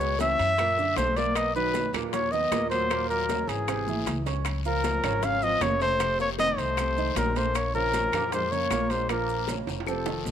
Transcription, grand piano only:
Already playing: B2 B3 B4
0.20 E3 E4 E5
0.59 A#2 A#3 A#4
0.79 D3 D4 D5
1.17 A#3 A#4 A#5
1.56 D#3 D#4 D#5
1.94 A#2 A#3 A#4
2.33 D#3 D#4 D#5
2.52 A#2 A#3 A#4
2.91 A#2 A#3 A#4
3.29 C#3 C#4 C#5
3.69 C3 C4 C5
3.88 E3 E4 E5
4.26 C#4 C#5 C#6
4.65 F3 F4 F5
5.04 C#3 C#4 C#5
5.42 F3 F4 F5
5.61 C#3 C#4 C#5
6.00 C3 C4 C5
6.39 D#3 D#4 D#5
6.78 C3 C4 C5
6.98 D#3 D#4 D#5
7.37 A#3 A#4 A#5
7.75 C#3 C#4 C#5
8.14 A#2 A#3 A#4
8.52 C#3 C#4 C#5
8.72 A#2 A#3 A#4
9.10 A#2 A#3 A#4
9.49 C#3 C#4 C#5
9.88 C3 C4 C5
10.07 D#3 D#4 D#5

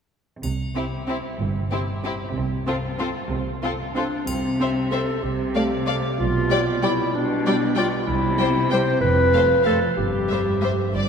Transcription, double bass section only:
0.44 C2
1.40 G1
2.35 C2
3.31 C2
4.28 C2
5.24 C2
6.19 B1
8.08 C2
9.03 F1
9.98 G1
10.94 G1

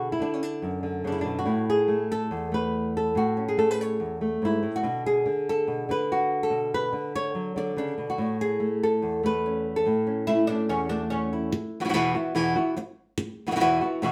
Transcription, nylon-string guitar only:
Already playing: B2 D3 F#4 G#4
0.12 E4
0.19 D3 D4
0.34 C#4
0.43 D4
0.62 F#2
0.83 D3
1.04 C#3 D4
1.12 E4
1.21 B2 D4
1.39 F#4
1.46 A2 E4
1.70 G#4
1.88 A3
2.12 A4
2.31 E2
2.52 A3 B4
2.97 A4
3.15 A2 F#4
3.37 C#4
3.48 G#4
3.57 A3 A4
3.71 B4
3.81 C#5
4.00 E2
4.21 A3
4.42 G#2 E4
4.63 A2
4.76 F#4
4.83 B2 D3 D4
5.06 G#4
5.26 D3
5.49 A4
5.67 B2
5.89 D3 B4
6.12 F#4
6.43 A4
6.50 B2
6.74 B4
6.93 D3
7.16 C#5
7.35 F#3
7.56 D3 D5
7.77 C#3 D4
7.98 B2
8.10 F#4
8.18 A2
8.41 G#4
8.60 A3
8.83 A4
9.02 E2
9.23 A3 B4
9.46 C#4
9.76 A4
9.86 A2 E4
10.07 C#4
10.28 A3
10.50 C#4
10.69 E2
10.90 A3
11.12 C#4
11.33 E4
11.53 muted nylon-string guitar stroke
11.80 B2 E3 B3 E4 F#4
11.85 B2 E3 B3 E4 F#4
11.89 B2 E3 B3 E4 F#4
11.94 E2 B2 E3 B3 E4 F#4
12.15 E3 B3 E4 F#4
12.35 E2 B2 E3 B3 E4 F#4
12.56 E3 B3 E4 F#4
12.77 muted nylon-string guitar stroke
13.18 muted nylon-string guitar stroke
13.47 B2 E3 B3 E4 F#4
13.51 B2 E3 B3 E4 F#4
13.56 B2 E3 B3 E4 F#4
13.60 E2 B2 E3 B3 E4 F#4
13.81 E3 B3 E4 F#4
14.02 E2 B2 E3 B3 E4 F#4

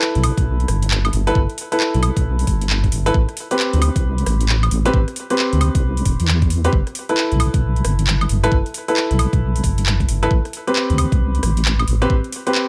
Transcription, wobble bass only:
0.15 B1
0.37 B1
0.68 G1
1.13 G1
1.35 G1
1.94 B1
2.17 B1
2.47 G1
2.92 G1
3.14 A1
3.73 D2
3.96 C2
4.26 A1
4.71 A1
4.94 A1
5.53 D2
5.75 C2
6.06 E1
6.20 E2
6.73 G1
7.32 B1
7.54 B1
7.85 G1
8.30 G1
8.52 G1
9.11 B1
9.33 B1
9.64 G1
10.09 G1
10.31 A1
10.90 D2
11.12 C2
11.43 A1
11.88 A1
12.10 A1

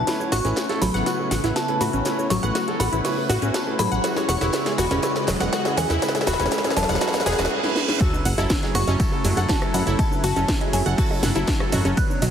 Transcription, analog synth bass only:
0.32 A1
0.45 A1
0.82 A1
0.94 A1
1.31 A1
1.44 A1
1.81 A2
1.93 A1
2.30 A1
2.43 A1
2.80 A1
2.93 A1
3.29 A1
3.42 A1
3.79 A2
3.92 A1
4.29 E1
4.41 E1
4.78 E1
4.91 E1
5.28 E1
5.40 E1
5.77 E2
5.90 E1
6.27 E1
6.40 E1
6.77 E1
6.89 E1
7.26 E1
7.39 E1
8.25 F#1
8.38 F#1
8.75 F#1
8.88 F#1
9.25 F#1
9.37 F#1
9.74 F#2
9.87 F#1
10.24 F#1
10.36 F#1
10.73 F#1
10.86 F#1
11.23 F#1
11.35 F#1
11.72 F#2
11.85 F#1
12.22 B1

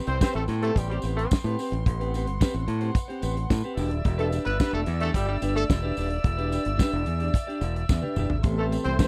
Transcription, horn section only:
0.07 C4 C5
0.21 C4 C5
0.34 A3 A4
0.62 A3 A4
0.76 G3 G4
0.90 G3 G4
1.16 A3 A4
4.18 A3 A4
4.45 B3 B4
4.60 B3 B4
4.73 A3 A4
5.01 A3 A4
5.14 G3 G4
5.28 G3 G4
5.55 A3 A4
8.57 A3 A4
8.84 C4 C5
8.99 C4 C5

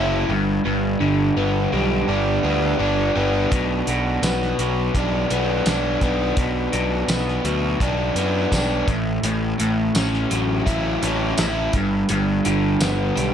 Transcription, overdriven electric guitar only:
Already playing: F#3 C#4 E4
0.30 G2
0.65 G2
1.00 D3
1.37 B3
1.73 G3
2.09 D4
2.44 B3
2.80 D4
3.16 B3
3.51 B2
3.88 B2
4.23 B3
4.59 F#3
4.95 D4
5.31 B3
5.66 D4
6.02 B3
6.37 B2
6.72 B2
7.09 B3
7.45 F#3
7.80 D4
8.16 B3
8.52 D4
8.88 A2
9.24 A2
9.59 A2
9.96 C#4
10.31 F#3
10.66 E4
11.02 C#4
11.38 E4
11.74 G2
12.10 G2
12.45 D3
12.81 B3
13.16 G3

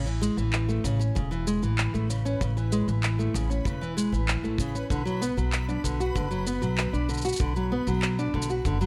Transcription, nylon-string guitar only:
0.06 E3
0.22 G#3
0.37 E3
0.69 A3
0.84 C#3
0.99 C#4
1.15 C#3
1.31 E3
1.47 G#3
1.62 E3
1.94 A3
2.10 C#3
2.25 C#4
2.41 C#3
2.57 E3
2.72 G#3
2.88 E3
3.19 A3
3.35 C#3
3.50 C#4
3.66 C#3
3.81 E3
3.97 G#3
4.12 E3
4.44 A3
4.60 C#3
4.75 C#4
4.91 D3
5.05 F#3
5.22 B3
5.37 F#3
5.69 D4
5.84 D3
6.00 F#4
6.15 D3
6.31 F#3
6.47 B3
6.62 F#3
6.93 D4
7.09 D3
7.25 F#4
7.40 D3
7.56 F#3
7.72 B3
7.87 F#3
8.19 D4
8.34 D3
8.50 F#4
8.66 D3
8.81 F#3

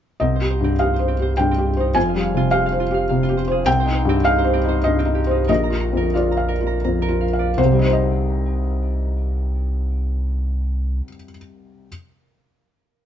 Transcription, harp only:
0.21 C4
0.36 C5
0.50 C5
0.64 C4
0.79 D#4
0.94 C5
1.08 C4
1.22 C5
1.37 C5
1.51 C4
1.80 D#4
1.94 F4
2.09 F5
2.23 F5
2.37 F4
2.52 C5
2.66 F5
2.80 F4
2.94 F5
3.09 F5
3.23 F4
3.37 C5
3.52 G#4
3.65 C4
3.80 C5
3.95 C5
4.09 C4
4.23 G4
4.38 C5
4.53 C4
4.68 C5
4.84 C5
4.99 C4
5.15 G4
5.31 D#4
5.48 A#4
5.64 A#5
5.81 A#5
5.97 A#4
6.14 F5
6.31 A#5
6.48 A#4
6.67 A#5
6.84 A#5
7.02 A#4
7.21 F5
7.39 D5

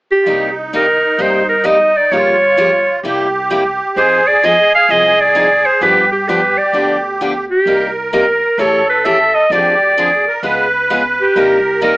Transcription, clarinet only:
0.11 G4
0.76 A#4
1.21 C5
1.49 A#4
1.66 D#5
1.97 D5
2.12 C#5
3.97 C5
4.28 D5
4.45 D#5
4.75 F5
4.91 D#5
5.21 D5
5.66 C5
5.83 B4
6.12 G4
6.28 B4
6.58 D5
7.51 G4
8.12 A#4
8.59 C#5
8.90 B4
9.06 E5
9.35 D#5
9.52 D5
11.21 G4
11.83 A#4

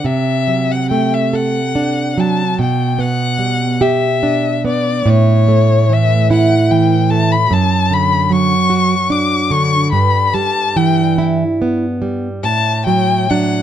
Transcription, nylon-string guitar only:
0.04 C3
0.47 F#3
0.91 A3
1.33 A4
1.75 D4
2.18 F#3
2.59 B2
2.99 B3
3.39 G3
3.81 G4
4.23 D4
4.65 B3
5.06 A2
5.48 A3
5.89 E3
6.31 E4
6.71 E3
7.11 A3
7.51 F#2
7.91 D3
8.30 F#3
8.70 F#4
9.10 D4
9.51 D3
9.92 G2
10.34 G3
10.76 E3
11.18 E4
11.62 B3
12.02 G3
12.44 A2
12.87 F#3
13.30 F#3 D4

